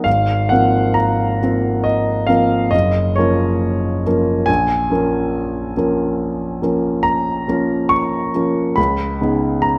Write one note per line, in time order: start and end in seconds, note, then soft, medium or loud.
0.04 0.50 G#1 soft
0.04 0.50 F5 medium
0.49 1.38 F3 soft
0.49 1.38 A#3 soft
0.49 1.38 C4 soft
0.49 1.38 A#4 soft
0.49 0.96 F#5 medium
0.94 1.84 A#5 medium
1.42 2.25 F3 soft
1.42 2.25 A#3 soft
1.42 2.26 C4 soft
1.42 2.26 A#4 soft
1.84 2.28 D#5 medium
2.27 2.69 F3 soft
2.27 2.69 A#3 soft
2.27 2.69 C4 soft
2.27 2.70 A#4 soft
2.27 2.72 F5 medium
2.71 3.16 F#1 soft
2.71 3.17 D#5 medium
3.16 4.02 F3 soft
3.16 4.02 A#3 soft
3.16 4.02 C#4 soft
3.16 4.02 A#4 soft
3.16 4.05 C#5 medium
4.06 4.44 F3 soft
4.06 4.44 A#3 soft
4.06 4.45 C#4 soft
4.06 4.45 A#4 soft
4.46 4.90 A#1 soft
4.46 7.05 G#5 medium
4.90 5.73 F3 soft
4.90 5.73 A#3 soft
4.90 5.73 C#4 soft
4.90 5.74 A#4 soft
5.77 6.59 F3 soft
5.77 6.59 A#3 soft
5.77 6.59 C#4 soft
5.77 6.59 A#4 soft
6.62 7.45 F3 soft
6.62 7.45 A#3 soft
6.62 7.45 C#4 soft
6.62 7.45 A#4 soft
7.03 7.91 A#5 medium
7.48 8.31 F3 soft
7.48 8.31 A#3 soft
7.48 8.31 C#4 soft
7.48 8.31 A#4 soft
7.89 8.76 C#6 medium
8.35 8.73 F3 soft
8.35 8.74 A#3 soft
8.35 8.74 C#4 soft
8.35 8.74 A#4 soft
8.76 9.19 C#2 soft
8.76 9.63 B5 medium
9.21 9.78 C#3 soft
9.21 9.78 B3 soft
9.21 9.78 D#4 soft
9.21 9.78 G#4 soft
9.62 9.78 A#5 medium